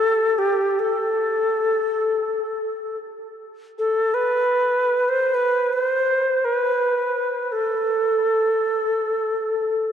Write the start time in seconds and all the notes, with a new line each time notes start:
Already playing: A4
0.38 G4
0.79 A4
3.79 A4
4.14 B4
5.08 C5
5.34 B4
5.73 C5
6.44 B4
7.52 A4